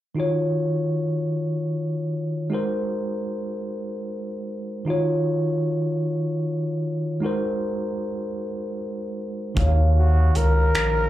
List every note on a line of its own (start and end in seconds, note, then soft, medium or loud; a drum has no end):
0.15 2.46 D#3 medium
0.15 2.47 D#4 soft
0.15 2.47 F4 soft
0.15 2.48 F#4 medium
0.20 2.49 C#5 medium
2.50 4.81 G#3 medium
2.50 4.82 D#4 soft
2.50 4.82 F#4 soft
2.50 4.83 A#4 medium
2.54 4.84 C5 medium
4.85 7.17 D#3 medium
4.85 7.17 D#4 medium
4.85 7.18 F4 medium
4.85 7.18 F#4 medium
4.90 7.19 C#5 medium
7.20 9.52 G#3 medium
7.20 9.53 D#4 medium
7.20 9.54 F#4 medium
7.24 9.54 A#4 medium
7.24 9.55 C5 medium
9.55 10.31 D#2 medium
9.55 11.10 D#3 medium
9.55 11.10 D#4 medium
9.55 11.10 F5 medium
9.55 kick medium
9.55 closed hi-hat medium
9.59 11.10 F#4 medium
9.59 11.10 C#5 medium
9.98 10.38 F#4 medium
10.35 10.71 C#2 medium
10.35 11.10 A#4 medium
10.35 closed hi-hat medium
10.75 11.10 A#1 medium
10.75 finger snap medium
10.75 closed hi-hat medium